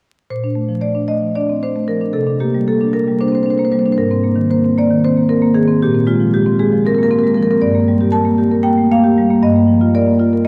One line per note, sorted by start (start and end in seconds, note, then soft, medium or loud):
0.30 2.12 A#2 soft
0.30 0.82 C5 medium
0.44 0.66 D4 soft
0.55 0.78 A3 soft
0.69 0.91 F3 soft
0.81 1.04 A3 soft
0.81 1.09 D5 medium
0.95 1.18 D4 soft
1.08 1.31 A3 soft
1.08 1.35 D#5 medium
1.21 1.44 F3 soft
1.35 1.58 D4 soft
1.35 1.62 D5 medium
1.49 1.64 C4 soft
1.63 1.85 D4 soft
1.63 1.89 C5 medium
1.76 1.98 A3 soft
1.88 2.10 F3 soft
1.88 2.14 A#4 medium
2.01 2.16 D4 soft
2.13 3.94 C3 soft
2.13 2.40 A4 medium
2.27 2.49 D4 soft
2.40 2.63 A#3 soft
2.40 2.67 G4 medium
2.54 2.76 G3 soft
2.68 2.89 A#3 soft
2.68 2.94 A4 medium
2.81 3.03 D4 soft
2.93 3.15 A#3 soft
2.93 3.19 A#4 medium
3.08 3.29 G3 soft
3.20 3.42 D4 soft
3.20 3.28 C5 medium
3.28 3.35 C5 medium
3.32 3.47 C4 soft
3.32 3.43 C5 medium
3.43 3.68 D4 soft
3.43 3.50 C5 medium
3.50 3.58 C5 medium
3.58 3.81 A#3 soft
3.58 3.65 C5 medium
3.65 3.72 C5 medium
3.72 3.94 G3 soft
3.72 3.79 C5 medium
3.79 3.86 C5 medium
3.85 3.99 D4 soft
3.85 3.92 C5 medium
3.92 3.96 C5 medium
3.98 5.76 G#2 soft
3.98 4.49 A#4 medium
4.11 4.33 C4 soft
4.24 4.46 A#3 soft
4.36 4.58 D#3 soft
4.50 4.72 A#3 soft
4.50 4.76 C5 medium
4.64 4.85 C4 soft
4.77 4.98 A#3 medium
4.77 5.03 D5 medium
4.90 5.11 D#3 soft
5.04 5.25 C4 medium
5.04 5.29 C5 medium
5.17 5.30 A#3 soft
5.29 5.50 C4 soft
5.29 5.54 A#4 medium
5.42 5.63 A#3 soft
5.54 5.76 D#3 soft
5.54 5.80 G#4 medium
5.68 5.81 C4 soft
5.82 7.58 A#2 medium
5.82 6.07 G4 medium
5.95 6.15 C4 soft
6.07 6.27 G#3 medium
6.07 6.32 F4 medium
6.20 6.40 F3 soft
6.34 6.54 G#3 soft
6.34 6.58 G4 medium
6.46 6.66 C4 soft
6.59 6.79 G#3 medium
6.59 6.83 G#4 medium
6.73 6.92 F3 soft
6.86 7.05 C4 medium
6.86 6.94 A#4 medium
6.94 7.10 A#3 soft
6.94 7.03 A#4 medium
7.03 7.11 A#4 medium
7.11 7.31 C4 medium
7.11 7.19 A#4 medium
7.19 7.27 A#4 medium
7.23 7.44 G#3 soft
7.23 7.34 A#4 medium
7.34 7.57 F3 medium
7.34 7.43 A#4 medium
7.43 7.51 A#4 medium
7.50 7.62 C4 medium
7.50 7.59 A#4 medium
7.62 9.37 G2 medium
7.62 8.10 D5 medium
7.75 7.95 A#3 soft
7.88 8.08 G3 soft
8.01 8.20 G4 medium
8.12 8.33 A#4 medium
8.12 8.61 A5 medium
8.25 8.46 A#3 soft
8.38 8.59 G4 medium
8.51 8.72 A#4 medium
8.63 8.84 A#3 medium
8.63 8.88 G5 medium
8.78 8.90 A3 soft
8.92 9.11 A#3 medium
8.92 9.40 F5 medium
9.04 9.24 G4 medium
9.18 9.37 G3 medium
9.30 9.42 A#3 medium
9.43 10.48 G2 medium
9.43 9.92 D#5 medium
9.56 9.76 A#3 soft
9.67 9.88 F3 soft
9.81 10.02 F4 soft
9.95 10.15 A#4 medium
9.95 10.44 D5 medium
10.07 10.27 A#3 soft
10.19 10.40 F4 medium
10.33 10.48 A#4 medium